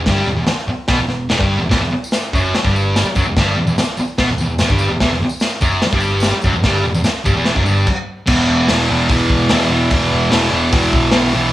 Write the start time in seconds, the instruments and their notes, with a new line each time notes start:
0.06 picked electric bass G1, distorted electric guitar G2 G3, kick, snare, open hi-hat
0.25 picked electric bass E1, distorted electric guitar E2
0.36 picked electric bass E1, distorted electric guitar E2
0.46 muted picked electric bass stroke, muted distorted electric guitar stroke, snare, open hi-hat
0.66 muted picked electric bass stroke, muted distorted electric guitar stroke
0.88 picked electric bass B1, distorted electric guitar B2 B3, kick, snare, open hi-hat
0.98 picked electric bass E1, distorted electric guitar E2
1.08 picked electric bass E1, distorted electric guitar E2
1.29 picked electric bass E1, distorted electric guitar E2 E3, snare, open hi-hat
1.38 picked electric bass G1, distorted electric guitar G2 G3, kick
1.58 picked electric bass E1, distorted electric guitar E2
1.69 picked electric bass E1, distorted electric guitar E2 E3, kick, snare, open hi-hat
1.81 picked electric bass E1, distorted electric guitar E2
1.91 muted distorted electric guitar stroke, muted picked electric bass stroke
2.04 tambourine
2.12 snare, open hi-hat, tambourine
2.26 tambourine
2.33 picked electric bass F#1, distorted electric guitar F#2 F#3, kick, tambourine
2.46 tambourine
2.54 muted picked electric bass stroke, muted distorted electric guitar stroke, snare, open hi-hat
2.64 picked electric bass G1, distorted electric guitar G2 G3, kick, tambourine
2.76 tambourine
2.96 snare, open hi-hat, tambourine
3.05 muted picked electric bass stroke, muted distorted electric guitar stroke, tambourine
3.15 picked electric bass F#1, distorted electric guitar F#2 F#3, kick, tambourine
3.25 picked electric bass E1, distorted electric guitar E2, tambourine
3.36 picked electric bass G1, distorted electric guitar G2 G3, kick, snare, open hi-hat
3.57 picked electric bass E1, distorted electric guitar E2
3.67 picked electric bass E1, distorted electric guitar E2, tambourine
3.78 muted distorted electric guitar stroke, muted picked electric bass stroke, snare, open hi-hat, tambourine
3.88 tambourine
3.97 muted distorted electric guitar stroke, muted picked electric bass stroke, tambourine
4.08 tambourine
4.18 picked electric bass B1, distorted electric guitar B2 B3, kick, snare, open hi-hat
4.29 picked electric bass E1, distorted electric guitar E2, tambourine
4.38 picked electric bass E1, distorted electric guitar E2, tambourine
4.58 picked electric bass E1, distorted electric guitar E2 E3, snare, open hi-hat, tambourine
4.69 picked electric bass G1, distorted electric guitar G2 G3, kick, tambourine
4.79 tambourine
4.89 picked electric bass E1, distorted electric guitar E2
5.00 picked electric bass E1, distorted electric guitar E2 E3, kick, snare, open hi-hat
5.12 picked electric bass E1, distorted electric guitar E2
5.21 muted picked electric bass stroke, muted distorted electric guitar stroke
5.29 tambourine
5.40 snare, open hi-hat, tambourine
5.50 tambourine
5.61 picked electric bass F#1, distorted electric guitar F#2 F#3, kick, tambourine
5.72 tambourine
5.82 muted distorted electric guitar stroke, muted picked electric bass stroke, snare, open hi-hat
5.91 picked electric bass G1, distorted electric guitar G2 G3, kick, tambourine
6.00 tambourine
6.20 snare, open hi-hat, tambourine
6.33 muted distorted electric guitar stroke, muted picked electric bass stroke
6.42 picked electric bass F#1, distorted electric guitar F#2, kick, tambourine
6.46 distorted electric guitar F#3
6.53 picked electric bass E1, distorted electric guitar E2, tambourine
6.63 picked electric bass G1, distorted electric guitar G2 G3, kick, snare, open hi-hat, tambourine
6.75 tambourine
6.84 picked electric bass E1, distorted electric guitar E2, tambourine
6.94 picked electric bass E1, distorted electric guitar E2, tambourine
7.04 muted distorted electric guitar stroke, muted picked electric bass stroke, snare, open hi-hat, tambourine
7.25 picked electric bass G1, distorted electric guitar G2 G3, kick, tambourine
7.35 picked electric bass E1, distorted electric guitar E2 E3, tambourine
7.45 snare, open hi-hat, tambourine
7.56 picked electric bass F#1, distorted electric guitar F#2 F#3, kick
7.64 picked electric bass G1, distorted electric guitar G2 G3, tambourine
7.87 kick, crash
8.27 picked electric bass E1, distorted electric guitar E2 B2 E3, kick, crash
8.49 picked electric bass E1
8.68 picked electric bass E1, distorted electric guitar E2 B2 E3, snare, open hi-hat
8.90 picked electric bass E1, distorted electric guitar E2 B2 E3
9.09 picked electric bass E1, distorted electric guitar E2 B2 E3, kick, open hi-hat
9.29 picked electric bass E1, kick
9.49 picked electric bass E1, distorted electric guitar E2 B2 E3, snare, open hi-hat
9.70 distorted electric guitar E2 B2 E3
9.91 picked electric bass E1, distorted electric guitar E2 B2 E3, kick, open hi-hat
10.12 picked electric bass E1
10.30 picked electric bass E1, distorted electric guitar E2 B2 E3, snare, open hi-hat
10.50 distorted electric guitar E2 B2 E3
10.72 picked electric bass E1, distorted electric guitar E2 B2 E3, kick, open hi-hat
10.92 picked electric bass B1, kick
11.11 picked electric bass B1, distorted electric guitar E2 B2 E3, snare, open hi-hat
11.33 picked electric bass B1, distorted electric guitar E2 B2 E3